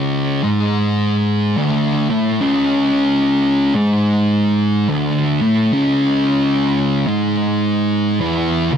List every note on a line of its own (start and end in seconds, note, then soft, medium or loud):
0.00 0.41 C#2 loud
0.00 0.42 C#3 loud
0.43 1.56 G#2 medium
0.43 1.57 G#3 loud
1.57 2.08 D2 medium
1.57 2.08 D3 loud
2.10 2.40 A2 medium
2.10 2.40 A3 medium
2.41 3.74 C#2 loud
2.41 3.74 C#3 loud
3.75 4.88 G#2 loud
3.75 4.88 G#3 medium
4.89 5.39 D2 medium
4.89 5.39 D3 loud
5.42 5.71 A2 medium
5.42 5.71 A3 loud
5.73 7.05 C#2 loud
5.73 7.06 C#3 loud
7.07 8.20 G#2 medium
7.07 8.20 G#3 medium
8.20 8.70 E2 medium
8.20 8.71 E3 loud
8.72 8.78 C#2 medium